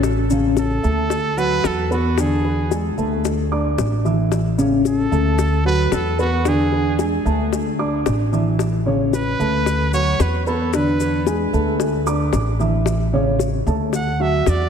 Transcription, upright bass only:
0.00 0.77 A1 loud
0.84 1.60 D2 medium
1.64 2.91 E2 medium
2.98 3.74 D2 medium
3.78 5.05 A1 medium
5.12 5.88 D2 medium
5.92 7.19 E2 medium
7.26 8.02 D2 medium
8.06 9.33 A1 medium
9.39 10.16 D2 medium
10.20 11.47 E2 medium
11.53 12.29 D2 medium
12.33 13.60 A1 loud
13.66 14.43 D2 medium
14.47 14.69 E2 medium

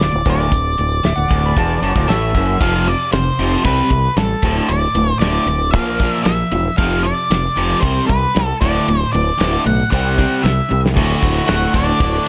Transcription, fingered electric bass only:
0.01 0.13 D1 medium
0.14 0.25 D1 medium
0.26 0.50 D1 medium
0.52 0.76 D1 medium
0.79 1.03 D1 medium
1.05 1.17 D1 medium
1.17 1.30 D1 medium
1.31 1.55 D1 medium
1.57 1.81 E1 medium
1.82 1.95 F#1 medium
1.96 2.06 D1 medium
2.07 2.32 A1 medium
2.34 2.59 F#1 medium
2.61 2.94 F1 medium
3.13 3.29 F1 medium
3.39 3.55 F1 medium
3.64 3.81 C2 medium
3.90 4.07 C2 medium
4.16 4.33 A1 medium
4.43 4.59 D1 medium
4.69 4.86 D1 medium
4.95 5.11 D1 medium
5.20 5.37 D1 medium
5.46 5.74 D1 medium
5.74 6.06 A#1 medium
6.25 6.42 A#1 medium
6.52 6.68 E1 medium
6.78 7.11 F1 medium
7.30 7.47 F1 medium
7.56 7.73 F1 medium
7.83 7.99 C2 loud
8.09 8.25 C2 medium
8.36 8.52 C2 medium
8.62 8.78 D1 medium
8.88 9.04 D1 medium
9.15 9.30 D1 medium
9.40 9.56 D1 loud
9.66 9.82 B1 medium
9.92 10.24 C2 loud
10.44 10.60 C2 medium
10.72 10.98 C2 loud
10.97 11.13 D1 medium
11.23 11.39 D1 medium
11.49 11.66 D1 medium
11.74 11.91 D1 medium
12.00 12.17 D1 medium

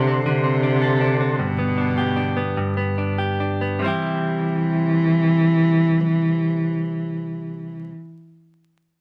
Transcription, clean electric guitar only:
0.00 0.26 D3 medium
0.00 0.63 D4 medium
0.00 0.80 A4 medium
0.07 0.43 C4 medium
0.26 3.76 D3 medium
0.44 1.19 C4 medium
0.63 1.00 D4 medium
0.82 1.46 A4 medium
1.01 1.77 D4 medium
1.20 1.46 C4 medium
1.39 2.56 G2 medium
1.58 2.35 B3 medium
1.78 2.15 D4 medium
1.98 3.18 G4 medium
2.16 2.97 D4 medium
2.37 2.76 B3 medium
2.57 3.91 G2 medium
2.77 3.60 B3 medium
2.98 3.39 D4 medium
3.18 3.87 G4 medium
3.40 3.85 D4 medium
3.61 3.84 B3 medium
3.79 7.88 C3 medium
3.79 7.91 G3 medium
3.84 7.93 C4 medium
3.84 7.95 E4 medium
3.84 7.97 G4 medium

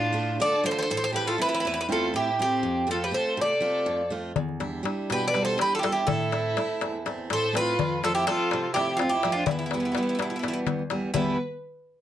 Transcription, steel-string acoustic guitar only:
0.00 0.37 A2 medium
0.13 0.53 A3 medium
0.13 0.54 D4 soft
0.13 0.54 F4 medium
0.40 0.88 D3 medium
0.63 0.84 A3 medium
0.63 0.84 D4 soft
0.63 0.85 F4 medium
0.90 1.38 A2 medium
1.12 1.37 A3 soft
1.12 1.38 C4 soft
1.12 1.38 E4 medium
1.38 1.79 A3 soft
1.38 1.79 C4 soft
1.38 1.79 E4 medium
1.65 2.13 E2 medium
1.89 2.29 A3 medium
1.89 2.29 C4 soft
1.89 2.29 E4 medium
2.14 2.62 A2 medium
2.39 2.59 A3 soft
2.39 2.59 C4 soft
2.39 2.59 E4 medium
2.63 3.11 F2 medium
2.87 3.10 A3 soft
2.87 3.11 C4 soft
2.87 3.11 F4 medium
3.11 3.52 A3 soft
3.11 3.52 C4 soft
3.11 3.52 F4 soft
3.37 3.86 C3 medium
3.60 4.01 A3 medium
3.60 4.01 C4 soft
3.60 4.02 F4 medium
3.86 4.35 F2 medium
4.10 4.31 A3 soft
4.10 4.31 C4 soft
4.10 4.32 F4 medium
4.36 4.84 E2 medium
4.60 4.82 G3 soft
4.60 4.82 D4 soft
4.60 4.82 E4 medium
4.83 5.23 G3 soft
4.83 5.24 D4 medium
4.83 5.24 E4 soft
5.10 5.58 B2 medium
5.35 5.74 G3 medium
5.35 5.75 D4 soft
5.35 5.75 E4 soft
5.58 6.06 E2 medium
5.83 6.03 G3 soft
5.83 6.03 D4 soft
5.83 6.03 E4 medium
6.08 6.55 A2 medium
6.32 6.56 A3 medium
6.32 6.56 C4 soft
6.32 6.57 E4 medium
6.57 6.96 A3 soft
6.57 6.96 C4 soft
6.57 6.97 E4 medium
6.82 7.29 E2 medium
7.06 7.44 A3 medium
7.06 7.45 C4 soft
7.06 7.45 E4 medium
7.30 7.77 A2 medium
7.53 7.73 A3 soft
7.53 7.73 C4 soft
7.53 7.73 E4 soft
7.79 8.25 F2 medium
8.03 8.27 F3 medium
8.03 8.27 A3 soft
8.03 8.28 C4 soft
8.28 8.66 F3 soft
8.28 8.66 A3 soft
8.28 8.67 C4 medium
8.53 8.99 C3 medium
8.76 9.14 F3 medium
8.76 9.14 A3 soft
8.76 9.14 C4 medium
9.01 9.47 F2 medium
9.24 9.43 F3 medium
9.24 9.43 A3 soft
9.24 9.43 C4 medium
9.48 9.94 E2 medium
9.73 9.95 E3 soft
9.73 9.97 G3 soft
9.73 9.96 B3 medium
9.97 10.34 E3 medium
9.97 10.35 G3 soft
9.97 10.35 B3 soft
10.19 10.65 B2 medium
10.43 10.81 E3 medium
10.43 10.82 G3 soft
10.43 10.82 B3 soft
10.67 11.13 E2 medium
10.91 11.10 E3 soft
10.91 11.10 G3 soft
10.91 11.10 B3 medium
11.14 11.36 E2 medium
11.14 11.36 B2 soft
11.14 11.37 E3 medium
11.14 11.37 G3 medium
11.14 11.37 B3 medium

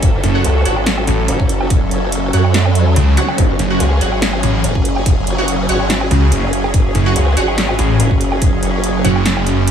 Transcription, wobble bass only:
0.03 0.22 F#1 loud
0.44 0.64 C#2 loud
0.65 1.06 G#1 loud
1.28 1.90 F#1 loud
1.91 2.32 F#1 medium
2.33 2.76 F#2 loud
2.76 2.95 F2 loud
3.38 3.58 F#1 loud
3.80 4.00 C#2 loud
4.01 4.42 G#1 loud
4.64 5.25 F#1 loud
5.27 5.67 F#1 loud
5.69 6.09 G#1 loud
6.43 6.72 F#1 medium
6.74 6.93 F#1 loud
7.16 7.35 C#2 loud
7.37 7.77 G#1 loud
8.00 8.61 F#1 loud
8.63 9.03 F#1 medium

